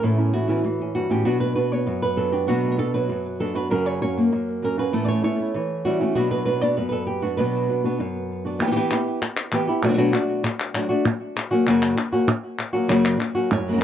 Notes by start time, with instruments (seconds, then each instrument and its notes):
0.03 nylon-string guitar A2 E3 B3 C#4 E4 A4
0.18 nylon-string guitar B3 C#4 E4
0.33 nylon-string guitar E3 B3 C#4 E4 F#4
0.48 nylon-string guitar E3 B3 C#4 E4
0.64 nylon-string guitar E3, muted nylon-string guitar stroke
0.82 nylon-string guitar C#4
0.95 nylon-string guitar G2 F#4
1.10 nylon-string guitar A2 B3 C#4 E4 G4
1.25 nylon-string guitar B2 F#3 B3 D4 F#4
1.40 nylon-string guitar B4
1.55 nylon-string guitar B3 D4 F#4 B4
1.72 nylon-string guitar B3 C#5
1.86 nylon-string guitar F#2, muted nylon-string guitar stroke
2.02 nylon-string guitar B4
2.16 nylon-string guitar F#3 B3 D4 F#4 A4
2.32 nylon-string guitar B3 D4 F#4 G4
2.47 nylon-string guitar B2 F#3 B3 D4 F#4
2.64 nylon-string guitar A3
2.72 nylon-string guitar B3
2.78 nylon-string guitar B3 D4 F#4 A4
2.94 nylon-string guitar F#3 B4
3.09 nylon-string guitar F#2, muted nylon-string guitar stroke
3.40 nylon-string guitar F#3 B3 D4 F#4 A4
3.55 nylon-string guitar B3 D4 F#4 B4
3.70 nylon-string guitar F#2 C#3 F#3 A#3 C#4 F#4 A#4
3.86 nylon-string guitar C#5
4.02 nylon-string guitar F#3 A#3 C#4 F#4 C#5
4.18 nylon-string guitar A#3
4.32 nylon-string guitar F#2, muted nylon-string guitar stroke
4.62 nylon-string guitar F#3 A#3 C#4 F#4 A#4
4.78 nylon-string guitar F#3 A#3 C#4 F#4 B4
4.92 nylon-string guitar A2 E3 A3 B3 C#4 E4 A4
5.05 nylon-string guitar C#5 D5
5.23 nylon-string guitar B3 C#4 E4 C#5
5.40 nylon-string guitar E4
5.54 nylon-string guitar E3, muted nylon-string guitar stroke
5.84 nylon-string guitar E3 G3 B3 C#4 E4 F#4
6.00 nylon-string guitar A3 B3 C#4 E4 G4
6.15 nylon-string guitar B2 F#3 B3 D4 F#4
6.31 nylon-string guitar B4
6.45 nylon-string guitar F#3 B3 D4 F#4 B4
6.61 nylon-string guitar B3 D4 F#4 D5
6.77 nylon-string guitar F#2 B4, muted nylon-string guitar stroke
6.89 nylon-string guitar A4 B4
7.07 nylon-string guitar G4
7.22 nylon-string guitar B3 D4 F#4
7.37 nylon-string guitar B2 F#3 B3 D4 F#4 B4
7.55 nylon-string guitar F#4
7.69 nylon-string guitar F#3 B3 D4 F#4
7.84 nylon-string guitar B3 D4 F#4
8.00 nylon-string guitar F#2, muted nylon-string guitar stroke
8.45 nylon-string guitar B3 D4 F#4 D5
8.59 nylon-string guitar E3 B3 E4 G4
8.67 nylon-string guitar E3 B3 E4 G4
8.71 nylon-string guitar E3 B3 E4 G4
8.76 nylon-string guitar E3 B3 E4 G4
8.91 nylon-string guitar B3 E4 G4, clap
9.22 muted nylon-string guitar stroke, clap
9.37 clap
9.52 nylon-string guitar E3 B3 E4 G4, clap
9.67 nylon-string guitar B3 E4 G4
9.83 nylon-string guitar B2 F#3 A3 D4 F#4
9.89 nylon-string guitar F#3 A3 D4 F#4
9.93 nylon-string guitar F#3 A3 D4 F#4
9.98 nylon-string guitar B2 F#3 A3 D4 F#4
10.12 nylon-string guitar A3 D4 F#4, clap
10.44 muted nylon-string guitar stroke, clap
10.60 clap
10.74 nylon-string guitar F#3 A3 D4 F#4, clap
10.89 nylon-string guitar A3 D4 F#4
11.05 muted nylon-string guitar stroke
11.37 clap
11.51 nylon-string guitar F#3 A#3 C#4 F#4
11.67 nylon-string guitar F#2 C#3 F#3 A#3 C#4 F#4, clap
11.82 clap
11.97 muted nylon-string guitar stroke, clap
12.12 nylon-string guitar F#3 A#3 C#4 F#4
12.28 muted nylon-string guitar stroke
12.59 clap
12.73 nylon-string guitar F#3 A#3 C#4 F#4
12.88 nylon-string guitar F#2 C#3 F#3 A#3 C#4 F#4, clap
13.05 clap
13.19 muted nylon-string guitar stroke, clap
13.35 nylon-string guitar F#3 A#3 C#4 F#4
13.51 nylon-string guitar F#2 C#5, muted nylon-string guitar stroke
13.68 nylon-string guitar C#3 F#3 A#3 C#4 F#4
13.72 nylon-string guitar C#3 F#3 A#3 C#4 F#4 A#4
13.77 nylon-string guitar C#3 F#3 A#3 C#4 F#4